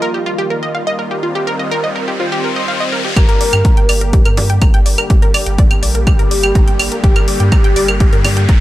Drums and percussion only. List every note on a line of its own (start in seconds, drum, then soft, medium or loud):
3.16 kick loud
3.16 closed hi-hat medium
3.16 claves soft
3.29 closed hi-hat soft
3.41 open hi-hat loud
3.53 closed hi-hat soft
3.53 claves soft
3.65 kick loud
3.65 closed hi-hat medium
3.77 closed hi-hat soft
3.89 open hi-hat loud
3.89 claves soft
4.01 closed hi-hat soft
4.13 kick loud
4.13 closed hi-hat medium
4.25 closed hi-hat soft
4.25 claves soft
4.37 open hi-hat loud
4.37 low conga medium
4.50 closed hi-hat soft
4.62 kick loud
4.62 closed hi-hat medium
4.62 claves soft
4.74 closed hi-hat soft
4.86 open hi-hat loud
4.98 closed hi-hat soft
4.98 claves soft
5.10 kick loud
5.10 closed hi-hat medium
5.22 closed hi-hat soft
5.34 open hi-hat loud
5.34 claves soft
5.47 closed hi-hat soft
5.58 kick loud
5.58 closed hi-hat medium
5.71 closed hi-hat soft
5.71 claves soft
5.83 open hi-hat loud
5.95 closed hi-hat soft
6.07 kick loud
6.07 closed hi-hat medium
6.07 claves soft
6.19 closed hi-hat soft
6.31 open hi-hat loud
6.43 closed hi-hat soft
6.43 claves medium
6.55 kick loud
6.55 closed hi-hat medium
6.68 closed hi-hat soft
6.79 open hi-hat loud
6.79 claves medium
6.92 closed hi-hat soft
7.04 kick loud
7.04 closed hi-hat medium
7.16 closed hi-hat soft
7.16 claves medium
7.28 open hi-hat loud
7.40 closed hi-hat soft
7.52 kick loud
7.52 closed hi-hat medium
7.52 claves medium
7.64 closed hi-hat soft
7.76 open hi-hat loud
7.88 closed hi-hat soft
7.88 claves soft
8.00 kick loud
8.00 closed hi-hat medium
8.13 closed hi-hat soft
8.25 open hi-hat loud
8.25 low conga medium
8.25 claves medium
8.37 closed hi-hat soft
8.49 kick loud
8.49 closed hi-hat medium